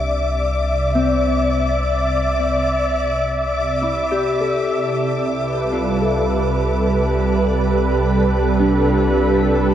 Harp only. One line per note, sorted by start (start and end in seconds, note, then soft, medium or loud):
0.00 1.61 D4 medium
0.00 1.88 G4 soft
0.95 4.47 C4 medium
3.82 5.78 E4 medium
4.11 6.47 G4 soft
4.41 6.01 A4 soft
5.72 8.86 F4 soft
6.02 9.51 A4 soft
8.60 9.74 D4 medium
8.87 9.74 F4 soft